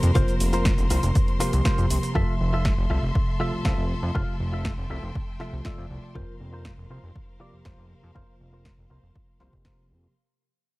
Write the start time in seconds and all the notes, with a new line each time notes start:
Already playing: C3 F3 A#3 G4 A#4 C5 C6
0.03 F2, muted clean electric guitar stroke, closed hi-hat, cabasa
0.14 F1 C3 F3 A#3 F4 A#4 C5, kick, closed hi-hat, cabasa
0.28 closed hi-hat, cabasa
0.40 F1, open hi-hat, cabasa
0.53 F4 A#4 C5, closed hi-hat, cabasa
0.65 kick, snare, closed hi-hat, cabasa
0.78 F1, closed hi-hat, cabasa
0.90 C2 F4 A#4 C5, open hi-hat, cabasa
1.03 F1, closed hi-hat, cabasa
1.15 muted clean electric guitar stroke, kick, closed hi-hat, cabasa
1.28 closed hi-hat
1.39 C3 F3 A#3 F4 G4 A#4 C5, snare, open hi-hat, cabasa
1.53 C2, closed hi-hat, cabasa
1.65 F4 A#4 C5, kick, snare, closed hi-hat, cabasa
1.78 F2, closed hi-hat, cabasa
1.90 C2, open hi-hat, cabasa
2.03 muted clean electric guitar stroke, closed hi-hat, cabasa
2.14 F1 C3 F3 A3 F4 A4 E5, kick
2.41 F1
2.53 F4 A4 E5
2.65 kick, snare
2.78 F1
2.90 C2 F4 A4 E5
3.03 F1
3.15 muted clean electric guitar stroke, kick
3.39 C3 F3 A3 F4 A4 E5
3.53 C2
3.65 C2 F4 A4 E5, kick, snare
3.78 F1
4.03 F2, muted clean electric guitar stroke
4.14 F1 C3 F3 A3 F4 A4 F5 G5, kick
4.40 F1
4.53 F4 A4 E5
4.65 kick, snare
4.78 F1
4.90 C2 F4 A4 E5
5.03 F1
5.15 muted clean electric guitar stroke, kick
5.39 C3 F3 A3 F4 A4 E5, snare
5.53 C2
5.65 F4 A4 D5 E5, kick, snare
5.78 F2
5.90 C2
6.03 muted clean electric guitar stroke
6.14 F1 C3 F3 A#3 F4 A#4 C5 F5, kick
6.40 F1
6.53 F4 A#4 C5
6.65 kick, snare
6.78 F1
6.90 C2 F4 A#4 C5
7.03 F1
7.15 muted clean electric guitar stroke, kick
7.40 C3 F3 A#3 F4 G4 A#4 D5
7.53 F1
7.65 F1 F4 A#4 C5, kick, snare
7.78 F1
8.03 F2, muted clean electric guitar stroke
8.15 F1 C3 F3 A#3 F4 A#4 C5, kick
8.40 F1
8.53 F4 A#4 C5
8.65 kick, snare
8.78 F1
8.90 C2 F4 A#4 C5
9.03 F1
9.16 muted clean electric guitar stroke, kick
9.39 C2 C3 F3 A#3 F4 G4 A#4 C5, snare
9.53 F1, kick
9.65 F4 A#4 C5, kick, snare
9.90 F2
10.03 muted clean electric guitar stroke